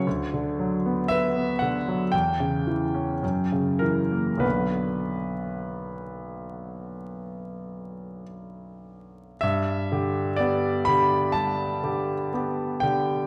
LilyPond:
<<
  \new Staff \with { instrumentName = "Grand piano" } { \time 4/4 \key b \minor \tempo 4 = 58 r4 e''8 fis''8 g''4. ais'8 | b'2. r4 | e''4 d''8 b''8 a''4. g''8 | }
  \new Staff \with { instrumentName = "Grand piano" } { \clef bass \time 4/4 \key b \minor d,16 d16 fis16 b16 b'16 b16 d16 fis16 e,16 cis16 e16 cis'16 fis,16 cis16 e16 ais16 | <b,, d b fis'>1 | g,8 <d g'>8 <b g'>8 <d g'>8 g8 <d g'>8 <b g'>8 <d g'>8 | }
>>